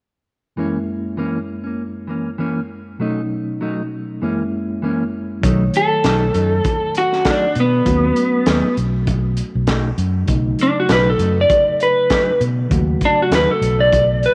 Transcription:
0.56 2.96 F#2 medium
0.56 0.77 E3 medium
0.56 2.96 G#3 soft
0.56 2.97 A#3 medium
0.56 0.78 A#3 medium
0.56 2.97 C#4 medium
0.56 0.78 C#4 medium
0.56 2.98 E4 medium
1.17 1.37 E3 medium
1.17 1.38 A#3 medium
1.17 1.39 C#4 medium
1.64 1.83 A#3 soft
1.64 1.82 C#4 soft
2.07 2.28 E3 soft
2.07 2.29 A#3 medium
2.07 2.30 C#4 medium
2.38 2.59 E3 medium
2.38 2.59 A#3 medium
2.38 2.60 C#4 medium
2.99 4.19 B2 medium
2.99 4.19 F#3 soft
2.99 3.20 F#3 medium
2.99 3.20 A3 medium
2.99 4.20 A3 medium
2.99 4.20 C#4 medium
2.99 4.20 D#4 medium
2.99 3.21 D#4 medium
3.61 3.81 F#3 medium
3.61 3.81 A3 medium
3.61 3.82 D#4 medium
4.21 5.41 F#2 medium
4.21 4.42 E3 medium
4.21 5.41 G#3 medium
4.21 5.41 A#3 medium
4.21 4.42 A#3 medium
4.21 5.42 C#4 medium
4.21 4.43 C#4 medium
4.21 5.42 E4 medium
4.82 5.02 E3 medium
4.82 5.03 A#3 medium
4.82 5.03 C#4 medium
5.41 5.68 B1 medium
5.41 7.83 D#3 medium
5.41 7.81 F#3 medium
5.41 5.63 F#3 medium
5.41 7.82 A3 medium
5.41 5.64 A3 medium
5.41 5.64 D#4 medium
5.41 7.82 C#5 medium
5.41 kick loud
5.41 closed hi-hat medium
5.74 6.93 A4 medium
5.74 closed hi-hat medium
6.04 6.29 B1 medium
6.04 6.24 F#3 medium
6.04 6.25 A3 medium
6.04 6.25 D#4 medium
6.04 snare loud
6.04 closed hi-hat medium
6.33 6.59 F#2 medium
6.33 6.54 F#3 medium
6.33 6.55 A3 medium
6.33 6.55 D#4 medium
6.33 closed hi-hat medium
6.64 kick loud
6.64 closed hi-hat medium
6.95 7.26 F#4 medium
6.95 closed hi-hat medium
7.13 snare soft
7.25 7.45 F#3 medium
7.25 7.46 A3 medium
7.25 7.46 D#4 medium
7.25 kick medium
7.25 snare loud
7.25 closed hi-hat medium
7.30 7.58 D4 medium
7.55 7.80 B2 medium
7.55 closed hi-hat medium
7.60 8.76 B3 medium
7.85 8.10 D#2 loud
7.85 10.24 F#3 medium
7.85 10.25 A3 medium
7.85 10.25 C#4 medium
7.85 10.26 F#4 medium
7.85 kick loud
7.85 closed hi-hat medium
8.16 closed hi-hat medium
8.46 8.61 D#2 medium
8.46 8.66 F#3 medium
8.46 8.67 A3 medium
8.46 8.67 D#4 medium
8.46 snare loud
8.46 closed hi-hat medium
8.65 muted fingered electric bass stroke soft
8.77 9.40 B1 medium
8.77 closed hi-hat medium
9.07 kick loud
9.07 closed hi-hat medium
9.37 closed hi-hat medium
9.55 9.90 B1 medium
9.67 9.87 F#3 medium
9.67 9.88 A3 medium
9.67 9.88 D#4 loud
9.67 kick medium
9.67 snare loud
9.67 closed hi-hat medium
9.98 10.23 F#2 medium
9.98 closed hi-hat medium
10.26 10.53 B1 medium
10.26 12.67 C#3 medium
10.26 12.66 F#3 medium
10.26 12.67 A3 medium
10.26 12.68 D#4 medium
10.26 kick loud
10.26 closed hi-hat medium
10.59 10.77 D4 medium
10.59 closed hi-hat medium
10.80 10.91 F#4 medium
10.88 11.14 B1 medium
10.88 11.09 F#3 medium
10.88 11.09 A3 medium
10.88 11.10 D#4 loud
10.88 11.07 B4 medium
10.88 snare loud
10.88 closed hi-hat medium
11.10 11.38 A4 medium
11.19 11.44 F#2 medium
11.19 11.39 F#3 medium
11.19 11.40 A3 medium
11.19 11.41 D#4 medium
11.19 closed hi-hat medium
11.41 11.81 D5 medium
11.50 kick loud
11.50 closed hi-hat medium
11.80 12.40 B4 loud
11.80 closed hi-hat medium
12.10 12.30 F#3 medium
12.10 12.31 A3 medium
12.10 12.31 D#4 medium
12.10 kick medium
12.10 snare loud
12.10 closed hi-hat medium
12.41 12.65 B2 medium
12.41 closed hi-hat medium
12.69 12.96 D#2 loud
12.69 14.34 C#3 medium
12.69 14.34 F#3 medium
12.69 14.34 A3 medium
12.69 14.34 F#4 medium
12.69 kick loud
12.69 closed hi-hat medium
13.01 kick medium
13.01 closed hi-hat medium
13.05 13.20 D4 medium
13.22 13.34 F#4 medium
13.31 13.45 D#2 medium
13.31 13.51 F#3 medium
13.31 13.52 A3 medium
13.31 13.52 D#4 medium
13.31 13.50 B4 medium
13.31 snare loud
13.31 closed hi-hat medium
13.51 13.79 A4 medium
13.61 14.25 B1 medium
13.61 closed hi-hat medium
13.78 13.97 A3 soft
13.78 13.96 D#4 soft
13.78 14.22 D5 medium
13.93 kick loud
13.93 closed hi-hat medium
14.23 14.34 B4 medium
14.23 closed hi-hat medium

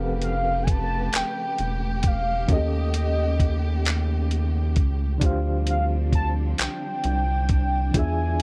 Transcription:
0.00 1.09 F1 loud
0.00 2.45 C#3 medium
0.00 2.43 F3 medium
0.00 5.18 A3 medium
0.00 2.44 C4 medium
0.00 2.45 G4 medium
0.00 5.18 G4 medium
0.00 2.46 A4 medium
0.00 2.50 A#4 medium
0.00 2.46 B4 medium
0.00 2.47 F5 medium
0.00 2.51 F#5 medium
0.22 0.65 F5 medium
0.22 closed hi-hat medium
0.63 0.72 G#5 medium
0.63 kick medium
0.68 1.17 A5 loud
0.68 closed hi-hat soft
1.13 1.23 E1 soft
1.13 2.09 G5 loud
1.13 clap loud
1.13 closed hi-hat medium
1.58 2.46 E1 medium
1.58 closed hi-hat soft
2.03 kick medium
2.03 closed hi-hat medium
2.07 2.54 F5 medium
2.46 4.79 D#2 loud
2.46 5.19 C#3 medium
2.46 5.16 D#3 medium
2.46 5.17 C#4 medium
2.46 2.56 F#4 soft
2.46 kick loud
2.46 closed hi-hat medium
2.52 5.19 A4 medium
2.52 3.87 D#5 medium
2.52 5.20 D#5 medium
2.56 5.21 G4 medium
2.94 closed hi-hat medium
3.40 kick medium
3.40 closed hi-hat soft
3.85 clap loud
3.85 closed hi-hat medium
4.31 closed hi-hat soft
4.76 5.18 C#2 medium
4.76 kick medium
4.76 closed hi-hat medium
5.18 6.54 D2 loud
5.18 7.89 D3 medium
5.18 7.91 F3 medium
5.18 7.91 G3 medium
5.18 7.91 C4 medium
5.18 7.89 D4 medium
5.18 8.42 D4 medium
5.18 7.90 F4 medium
5.18 kick loud
5.18 closed hi-hat medium
5.23 7.91 G4 medium
5.23 7.92 C5 medium
5.23 7.93 F5 medium
5.67 5.84 F5 medium
5.67 closed hi-hat medium
6.13 6.29 A5 loud
6.13 kick medium
6.13 closed hi-hat soft
6.58 6.68 C2 soft
6.58 7.99 G5 loud
6.58 clap loud
6.58 closed hi-hat medium
7.04 7.91 C2 medium
7.04 closed hi-hat soft
7.49 kick medium
7.49 closed hi-hat medium
7.91 8.42 E2 loud
7.91 8.42 D3 medium
7.91 8.42 E3 medium
7.91 8.42 G#3 medium
7.91 8.42 D4 medium
7.91 kick loud
7.91 closed hi-hat medium
7.95 8.42 F4 medium
7.95 8.42 G#4 medium
7.95 8.42 G#5 loud
7.99 8.42 E5 medium

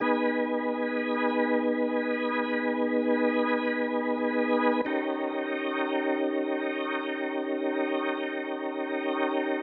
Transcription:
0.00 4.81 B3 medium
0.00 4.81 D#4 soft
0.00 4.81 G#4 soft
0.00 4.81 B4 medium
4.85 9.62 C#4 medium
4.85 9.62 D#4 medium
4.85 9.62 G4 medium
4.85 9.62 A#4 medium

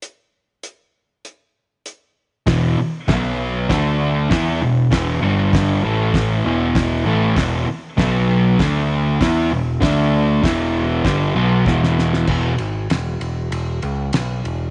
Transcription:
0.02 closed hi-hat medium
0.63 closed hi-hat medium
1.25 closed hi-hat medium
1.86 closed hi-hat medium
2.46 2.76 E1 loud
2.46 2.77 E2 medium
2.46 2.77 B2 loud
2.46 2.78 E3 loud
2.46 kick loud
2.46 snare loud
2.46 open hi-hat medium
2.77 muted picked electric bass stroke soft
2.77 muted distorted electric guitar stroke medium
3.08 3.66 B1 medium
3.08 3.69 B2 medium
3.08 3.69 F#3 medium
3.08 3.70 B3 loud
3.08 kick loud
3.08 snare loud
3.08 open hi-hat medium
3.69 4.27 D2 loud
3.69 4.30 D3 medium
3.69 4.30 A3 medium
3.69 4.31 D4 loud
3.69 kick loud
3.69 snare loud
3.69 open hi-hat medium
4.30 4.60 E2 medium
4.30 4.60 E3 loud
4.30 4.61 B3 loud
4.30 4.61 E4 loud
4.30 kick loud
4.30 snare loud
4.30 open hi-hat medium
4.60 4.90 E1 medium
4.60 4.86 E2 medium
4.60 4.86 B2 medium
4.90 5.20 E1 loud
4.90 5.22 E2 medium
4.90 5.23 B2 loud
4.90 5.24 E3 medium
4.90 kick loud
4.90 snare loud
4.90 open hi-hat medium
5.21 5.79 G1 loud
5.21 5.83 G2 loud
5.21 5.83 D3 medium
5.21 5.84 G3 loud
5.53 kick loud
5.53 snare loud
5.53 open hi-hat medium
5.82 6.40 A1 medium
5.82 6.44 A2 medium
5.82 6.45 E3 medium
5.82 6.45 A3 medium
6.14 kick loud
6.14 snare loud
6.14 open hi-hat medium
6.45 7.02 E1 loud
6.45 7.05 E2 loud
6.45 7.04 B2 medium
6.45 7.04 E3 loud
6.75 kick loud
6.75 snare loud
6.75 open hi-hat medium
7.05 7.34 A1 medium
7.05 7.35 A2 medium
7.05 7.36 E3 medium
7.05 7.37 A3 loud
7.35 7.65 E1 loud
7.35 7.66 E2 loud
7.35 7.66 B2 loud
7.35 7.67 E3 loud
7.35 kick loud
7.35 snare loud
7.35 open hi-hat medium
7.67 muted distorted electric guitar stroke medium
7.67 muted picked electric bass stroke soft
7.97 8.56 B1 loud
7.97 8.58 B2 medium
7.97 8.58 F#3 loud
7.97 8.59 B3 loud
7.97 kick loud
7.97 snare loud
7.97 open hi-hat medium
8.59 9.17 D2 loud
8.59 9.20 D3 loud
8.59 9.20 A3 loud
8.59 9.21 D4 loud
8.59 kick medium
8.59 snare loud
8.59 open hi-hat medium
9.20 9.49 E2 loud
9.20 9.51 E3 medium
9.20 9.51 B3 loud
9.20 9.51 E4 loud
9.20 kick loud
9.20 snare loud
9.20 open hi-hat medium
9.51 9.80 E1 medium
9.51 9.76 E2 medium
9.51 9.76 B2 medium
9.80 10.39 D2 loud
9.80 10.42 D3 medium
9.80 10.43 A3 loud
9.80 10.43 D4 loud
9.80 kick loud
9.80 snare loud
9.80 open hi-hat medium
10.42 11.01 E1 loud
10.42 11.04 E2 medium
10.42 11.04 B2 medium
10.42 11.04 E3 loud
10.42 kick loud
10.42 snare loud
10.42 open hi-hat medium
11.05 11.34 G1 loud
11.05 11.35 G2 loud
11.05 11.35 D3 loud
11.05 11.35 G3 loud
11.05 kick loud
11.05 snare medium
11.05 open hi-hat soft
11.35 11.65 B1 loud
11.35 11.65 B2 medium
11.35 11.66 F#3 loud
11.35 11.66 B3 loud
11.66 12.24 E1 loud
11.66 12.26 E2 loud
11.66 12.27 B2 loud
11.66 12.28 E3 loud
11.66 kick loud
11.66 snare medium
11.84 snare medium
11.99 snare medium
12.13 snare medium
12.27 12.55 E1 medium
12.27 12.53 E2 medium
12.27 12.53 B2 medium
12.27 12.53 E3 loud
12.27 kick loud
12.27 crash loud
12.58 12.87 G#1 medium
12.58 ride medium
12.90 13.18 E1 loud
12.90 snare loud
12.90 ride loud
13.20 13.48 E1 medium
13.20 ride medium
13.51 13.79 E1 loud
13.51 ride medium
13.82 14.10 C#2 medium
13.82 ride medium
14.13 14.41 B1 medium
14.13 snare loud
14.13 ride loud
14.44 14.71 E1 medium
14.44 ride medium

